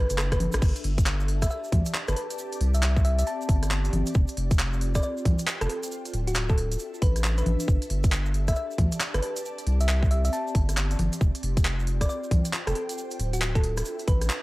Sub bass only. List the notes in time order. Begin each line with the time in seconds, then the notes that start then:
0.10 F#1
0.54 A1
0.62 G1
0.84 G1
1.72 D2
2.08 G1
2.61 C2
3.49 G1
3.93 G1
4.15 F1
4.37 F1
5.25 C2
5.61 F1
6.13 D1
7.02 A1
7.46 A1
7.68 G1
7.90 G1
8.78 D2
9.14 G1
9.67 C2
10.55 G1
10.99 G1
11.21 F1
11.43 F1
12.31 C2
12.67 F1
13.19 D1
14.08 A1